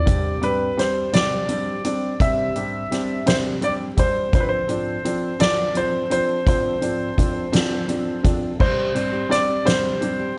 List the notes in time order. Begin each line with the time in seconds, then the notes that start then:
Already playing: D5
0.06 C3 G3 C4 D4 G4, kick, closed hi-hat
0.41 G3 C4 D4 G4 B4, closed hi-hat
0.77 G3 C4 D4 G4 C5, snare, closed hi-hat
1.13 C3 G3 C4 D4 G4 D5, snare, closed hi-hat
1.48 G3 C4 D4 G4, closed hi-hat
1.84 G3 C4 D4 G4, closed hi-hat
2.20 C3 G3 C4 D4 G4 E5, kick, closed hi-hat
2.55 G3 C4 D4 G4, closed hi-hat
2.90 G3 C4 D4 G4, snare, closed hi-hat
3.26 C3 G3 C4 D4 G4 C5, snare, closed hi-hat
3.61 G3 C4 D4 G4 D5, closed hi-hat
3.97 G3 C4 D4 G4 C5, kick, closed hi-hat
4.32 D3 F3 C4 D4 A4 C5, kick, closed hi-hat
4.40 B4
4.49 C5
4.67 F3 C4 D4 A4, closed hi-hat
5.04 F3 C4 D4 A4, closed hi-hat
5.39 D3 F3 C4 D4 A4 D5, snare, closed hi-hat
5.75 F3 C4 D4 A4 C5, closed hi-hat
6.10 F3 C4 D4 A4 C5, closed hi-hat
6.46 D3 F3 C4 D4 A4 C5, kick, closed hi-hat
6.82 F3 C4 D4 A4, closed hi-hat
7.17 F3 C4 D4 A4, kick, closed hi-hat
7.52 D3 F3 C4 D4 A4, snare, closed hi-hat
7.88 F3 C4 D4 A4, closed hi-hat
8.23 F3 C4 D4 A4, kick, closed hi-hat
8.59 C3 G3 C4 D4 G4 C5, kick, crash
8.95 G3 C4 D4 G4, closed hi-hat
9.13 C4 D4 G4
9.29 G3 C4 D4 D5, snare, closed hi-hat
9.49 C4 D4 G4
9.65 C3 G3 C4 D4 G4 C5, snare, closed hi-hat
10.01 G3 C4 D4 G4, closed hi-hat
10.20 C4 D4 G4